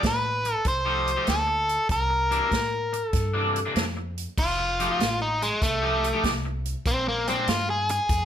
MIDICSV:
0, 0, Header, 1, 6, 480
1, 0, Start_track
1, 0, Tempo, 619835
1, 1470, Time_signature, 4, 2, 24, 8
1, 6389, End_track
2, 0, Start_track
2, 0, Title_t, "Overdriven electric guitar"
2, 0, Program_c, 0, 29
2, 53, Note_on_c, 0, 71, 78
2, 425, Note_off_c, 0, 71, 0
2, 425, Note_on_c, 0, 69, 78
2, 524, Note_off_c, 0, 69, 0
2, 527, Note_on_c, 0, 72, 81
2, 1000, Note_off_c, 0, 72, 0
2, 1003, Note_on_c, 0, 69, 83
2, 1446, Note_off_c, 0, 69, 0
2, 1484, Note_on_c, 0, 70, 75
2, 2374, Note_off_c, 0, 70, 0
2, 2374, Note_on_c, 0, 69, 75
2, 2887, Note_off_c, 0, 69, 0
2, 3399, Note_on_c, 0, 65, 106
2, 4016, Note_off_c, 0, 65, 0
2, 4040, Note_on_c, 0, 63, 79
2, 4191, Note_off_c, 0, 63, 0
2, 4202, Note_on_c, 0, 56, 77
2, 4352, Note_off_c, 0, 56, 0
2, 4360, Note_on_c, 0, 57, 94
2, 4821, Note_off_c, 0, 57, 0
2, 5320, Note_on_c, 0, 60, 98
2, 5470, Note_off_c, 0, 60, 0
2, 5486, Note_on_c, 0, 58, 78
2, 5634, Note_off_c, 0, 58, 0
2, 5635, Note_on_c, 0, 60, 70
2, 5788, Note_off_c, 0, 60, 0
2, 5799, Note_on_c, 0, 65, 80
2, 5950, Note_off_c, 0, 65, 0
2, 5965, Note_on_c, 0, 68, 81
2, 6112, Note_off_c, 0, 68, 0
2, 6125, Note_on_c, 0, 68, 96
2, 6389, Note_off_c, 0, 68, 0
2, 6389, End_track
3, 0, Start_track
3, 0, Title_t, "Clean electric guitar"
3, 0, Program_c, 1, 27
3, 661, Note_on_c, 1, 67, 81
3, 665, Note_on_c, 1, 63, 100
3, 667, Note_on_c, 1, 57, 85
3, 673, Note_on_c, 1, 53, 82
3, 852, Note_off_c, 1, 67, 0
3, 854, Note_off_c, 1, 63, 0
3, 855, Note_off_c, 1, 57, 0
3, 858, Note_off_c, 1, 53, 0
3, 900, Note_on_c, 1, 67, 85
3, 907, Note_on_c, 1, 63, 72
3, 908, Note_on_c, 1, 57, 73
3, 910, Note_on_c, 1, 53, 59
3, 1032, Note_off_c, 1, 67, 0
3, 1035, Note_off_c, 1, 63, 0
3, 1036, Note_off_c, 1, 57, 0
3, 1037, Note_off_c, 1, 53, 0
3, 1787, Note_on_c, 1, 48, 79
3, 1790, Note_on_c, 1, 52, 91
3, 1794, Note_on_c, 1, 58, 86
3, 1794, Note_on_c, 1, 62, 95
3, 1855, Note_off_c, 1, 62, 0
3, 1860, Note_off_c, 1, 58, 0
3, 1862, Note_off_c, 1, 52, 0
3, 1864, Note_on_c, 1, 62, 72
3, 1865, Note_off_c, 1, 48, 0
3, 1869, Note_on_c, 1, 58, 71
3, 1871, Note_on_c, 1, 52, 67
3, 1875, Note_on_c, 1, 48, 61
3, 1935, Note_off_c, 1, 48, 0
3, 1935, Note_off_c, 1, 52, 0
3, 1939, Note_off_c, 1, 58, 0
3, 1940, Note_off_c, 1, 62, 0
3, 2583, Note_on_c, 1, 62, 96
3, 2585, Note_on_c, 1, 58, 81
3, 2587, Note_on_c, 1, 52, 84
3, 2593, Note_on_c, 1, 48, 68
3, 2774, Note_off_c, 1, 62, 0
3, 2775, Note_off_c, 1, 58, 0
3, 2776, Note_off_c, 1, 52, 0
3, 2779, Note_off_c, 1, 48, 0
3, 2829, Note_on_c, 1, 62, 75
3, 2833, Note_on_c, 1, 58, 68
3, 2837, Note_on_c, 1, 52, 68
3, 2838, Note_on_c, 1, 48, 61
3, 2957, Note_off_c, 1, 62, 0
3, 2959, Note_off_c, 1, 58, 0
3, 2961, Note_off_c, 1, 52, 0
3, 2962, Note_off_c, 1, 48, 0
3, 3714, Note_on_c, 1, 53, 89
3, 3717, Note_on_c, 1, 57, 88
3, 3717, Note_on_c, 1, 63, 86
3, 3720, Note_on_c, 1, 67, 87
3, 3785, Note_off_c, 1, 67, 0
3, 3787, Note_off_c, 1, 63, 0
3, 3791, Note_off_c, 1, 57, 0
3, 3793, Note_off_c, 1, 53, 0
3, 3794, Note_on_c, 1, 67, 75
3, 3796, Note_on_c, 1, 63, 69
3, 3800, Note_on_c, 1, 57, 67
3, 3803, Note_on_c, 1, 53, 55
3, 3862, Note_off_c, 1, 53, 0
3, 3864, Note_off_c, 1, 57, 0
3, 3868, Note_off_c, 1, 67, 0
3, 3870, Note_off_c, 1, 63, 0
3, 4508, Note_on_c, 1, 67, 90
3, 4513, Note_on_c, 1, 63, 87
3, 4516, Note_on_c, 1, 57, 84
3, 4520, Note_on_c, 1, 53, 77
3, 4696, Note_off_c, 1, 67, 0
3, 4699, Note_off_c, 1, 63, 0
3, 4701, Note_off_c, 1, 57, 0
3, 4702, Note_off_c, 1, 53, 0
3, 4747, Note_on_c, 1, 67, 83
3, 4753, Note_on_c, 1, 63, 72
3, 4756, Note_on_c, 1, 57, 68
3, 4758, Note_on_c, 1, 53, 66
3, 4876, Note_off_c, 1, 67, 0
3, 4879, Note_off_c, 1, 63, 0
3, 4881, Note_off_c, 1, 57, 0
3, 4882, Note_off_c, 1, 53, 0
3, 5639, Note_on_c, 1, 46, 91
3, 5639, Note_on_c, 1, 56, 89
3, 5645, Note_on_c, 1, 60, 85
3, 5646, Note_on_c, 1, 62, 98
3, 5706, Note_off_c, 1, 62, 0
3, 5708, Note_off_c, 1, 60, 0
3, 5713, Note_off_c, 1, 56, 0
3, 5714, Note_off_c, 1, 46, 0
3, 5716, Note_on_c, 1, 62, 76
3, 5718, Note_on_c, 1, 60, 70
3, 5722, Note_on_c, 1, 56, 66
3, 5725, Note_on_c, 1, 46, 63
3, 5785, Note_off_c, 1, 46, 0
3, 5788, Note_off_c, 1, 56, 0
3, 5788, Note_off_c, 1, 62, 0
3, 5789, Note_off_c, 1, 60, 0
3, 6389, End_track
4, 0, Start_track
4, 0, Title_t, "Upright bass"
4, 0, Program_c, 2, 32
4, 26, Note_on_c, 2, 33, 83
4, 406, Note_off_c, 2, 33, 0
4, 505, Note_on_c, 2, 36, 86
4, 886, Note_off_c, 2, 36, 0
4, 988, Note_on_c, 2, 38, 88
4, 1368, Note_off_c, 2, 38, 0
4, 1466, Note_on_c, 2, 36, 91
4, 1847, Note_off_c, 2, 36, 0
4, 1948, Note_on_c, 2, 45, 82
4, 2328, Note_off_c, 2, 45, 0
4, 2426, Note_on_c, 2, 43, 79
4, 2807, Note_off_c, 2, 43, 0
4, 2907, Note_on_c, 2, 41, 84
4, 3288, Note_off_c, 2, 41, 0
4, 3390, Note_on_c, 2, 29, 87
4, 3769, Note_off_c, 2, 29, 0
4, 3869, Note_on_c, 2, 33, 85
4, 4248, Note_off_c, 2, 33, 0
4, 4353, Note_on_c, 2, 36, 81
4, 4731, Note_off_c, 2, 36, 0
4, 4831, Note_on_c, 2, 36, 89
4, 5210, Note_off_c, 2, 36, 0
4, 5310, Note_on_c, 2, 34, 78
4, 5689, Note_off_c, 2, 34, 0
4, 5791, Note_on_c, 2, 43, 91
4, 6169, Note_off_c, 2, 43, 0
4, 6268, Note_on_c, 2, 41, 80
4, 6389, Note_off_c, 2, 41, 0
4, 6389, End_track
5, 0, Start_track
5, 0, Title_t, "Muted clean electric guitar strokes"
5, 24, Note_on_c, 9, 29, 50
5, 102, Note_off_c, 9, 29, 0
5, 352, Note_on_c, 9, 29, 49
5, 429, Note_off_c, 9, 29, 0
5, 1139, Note_on_c, 9, 29, 46
5, 1217, Note_off_c, 9, 29, 0
5, 1622, Note_on_c, 9, 29, 45
5, 1700, Note_off_c, 9, 29, 0
5, 1944, Note_on_c, 9, 29, 48
5, 2022, Note_off_c, 9, 29, 0
5, 2265, Note_on_c, 9, 29, 46
5, 2343, Note_off_c, 9, 29, 0
5, 3072, Note_on_c, 9, 29, 48
5, 3150, Note_off_c, 9, 29, 0
5, 3553, Note_on_c, 9, 29, 50
5, 3631, Note_off_c, 9, 29, 0
5, 3871, Note_on_c, 9, 29, 51
5, 3949, Note_off_c, 9, 29, 0
5, 4196, Note_on_c, 9, 29, 49
5, 4274, Note_off_c, 9, 29, 0
5, 4998, Note_on_c, 9, 29, 50
5, 5075, Note_off_c, 9, 29, 0
5, 5474, Note_on_c, 9, 29, 55
5, 5551, Note_off_c, 9, 29, 0
5, 5794, Note_on_c, 9, 29, 45
5, 5872, Note_off_c, 9, 29, 0
5, 6116, Note_on_c, 9, 29, 49
5, 6193, Note_off_c, 9, 29, 0
5, 6389, End_track
6, 0, Start_track
6, 0, Title_t, "Drums"
6, 24, Note_on_c, 9, 42, 70
6, 25, Note_on_c, 9, 36, 73
6, 33, Note_on_c, 9, 38, 104
6, 101, Note_off_c, 9, 42, 0
6, 102, Note_off_c, 9, 36, 0
6, 111, Note_off_c, 9, 38, 0
6, 347, Note_on_c, 9, 42, 57
6, 425, Note_off_c, 9, 42, 0
6, 501, Note_on_c, 9, 42, 80
6, 504, Note_on_c, 9, 36, 103
6, 510, Note_on_c, 9, 38, 33
6, 578, Note_off_c, 9, 42, 0
6, 582, Note_off_c, 9, 36, 0
6, 587, Note_off_c, 9, 38, 0
6, 832, Note_on_c, 9, 42, 61
6, 909, Note_off_c, 9, 42, 0
6, 981, Note_on_c, 9, 42, 82
6, 991, Note_on_c, 9, 38, 96
6, 1059, Note_off_c, 9, 42, 0
6, 1068, Note_off_c, 9, 38, 0
6, 1310, Note_on_c, 9, 42, 58
6, 1387, Note_off_c, 9, 42, 0
6, 1464, Note_on_c, 9, 42, 78
6, 1466, Note_on_c, 9, 36, 113
6, 1474, Note_on_c, 9, 38, 32
6, 1542, Note_off_c, 9, 42, 0
6, 1543, Note_off_c, 9, 36, 0
6, 1551, Note_off_c, 9, 38, 0
6, 1793, Note_on_c, 9, 42, 53
6, 1870, Note_off_c, 9, 42, 0
6, 1947, Note_on_c, 9, 36, 72
6, 1949, Note_on_c, 9, 42, 74
6, 1958, Note_on_c, 9, 38, 94
6, 2025, Note_off_c, 9, 36, 0
6, 2026, Note_off_c, 9, 42, 0
6, 2035, Note_off_c, 9, 38, 0
6, 2272, Note_on_c, 9, 42, 62
6, 2350, Note_off_c, 9, 42, 0
6, 2423, Note_on_c, 9, 42, 87
6, 2426, Note_on_c, 9, 36, 101
6, 2432, Note_on_c, 9, 38, 31
6, 2501, Note_off_c, 9, 42, 0
6, 2503, Note_off_c, 9, 36, 0
6, 2510, Note_off_c, 9, 38, 0
6, 2754, Note_on_c, 9, 42, 63
6, 2832, Note_off_c, 9, 42, 0
6, 2908, Note_on_c, 9, 42, 78
6, 2918, Note_on_c, 9, 38, 98
6, 2986, Note_off_c, 9, 42, 0
6, 2995, Note_off_c, 9, 38, 0
6, 3234, Note_on_c, 9, 42, 63
6, 3311, Note_off_c, 9, 42, 0
6, 3388, Note_on_c, 9, 36, 111
6, 3390, Note_on_c, 9, 49, 99
6, 3466, Note_off_c, 9, 36, 0
6, 3468, Note_off_c, 9, 49, 0
6, 3716, Note_on_c, 9, 42, 61
6, 3793, Note_off_c, 9, 42, 0
6, 3873, Note_on_c, 9, 42, 82
6, 3883, Note_on_c, 9, 38, 103
6, 3951, Note_off_c, 9, 42, 0
6, 3960, Note_off_c, 9, 38, 0
6, 4199, Note_on_c, 9, 42, 61
6, 4276, Note_off_c, 9, 42, 0
6, 4350, Note_on_c, 9, 36, 110
6, 4351, Note_on_c, 9, 42, 79
6, 4360, Note_on_c, 9, 38, 34
6, 4427, Note_off_c, 9, 36, 0
6, 4428, Note_off_c, 9, 42, 0
6, 4438, Note_off_c, 9, 38, 0
6, 4678, Note_on_c, 9, 42, 65
6, 4756, Note_off_c, 9, 42, 0
6, 4830, Note_on_c, 9, 36, 78
6, 4833, Note_on_c, 9, 42, 77
6, 4842, Note_on_c, 9, 38, 108
6, 4907, Note_off_c, 9, 36, 0
6, 4910, Note_off_c, 9, 42, 0
6, 4919, Note_off_c, 9, 38, 0
6, 5153, Note_on_c, 9, 42, 58
6, 5231, Note_off_c, 9, 42, 0
6, 5309, Note_on_c, 9, 36, 102
6, 5309, Note_on_c, 9, 42, 79
6, 5386, Note_off_c, 9, 36, 0
6, 5386, Note_off_c, 9, 42, 0
6, 5633, Note_on_c, 9, 42, 60
6, 5710, Note_off_c, 9, 42, 0
6, 5788, Note_on_c, 9, 42, 75
6, 5797, Note_on_c, 9, 38, 105
6, 5865, Note_off_c, 9, 42, 0
6, 5875, Note_off_c, 9, 38, 0
6, 6110, Note_on_c, 9, 42, 66
6, 6188, Note_off_c, 9, 42, 0
6, 6266, Note_on_c, 9, 42, 88
6, 6268, Note_on_c, 9, 36, 106
6, 6275, Note_on_c, 9, 38, 31
6, 6343, Note_off_c, 9, 42, 0
6, 6345, Note_off_c, 9, 36, 0
6, 6352, Note_off_c, 9, 38, 0
6, 6389, End_track
0, 0, End_of_file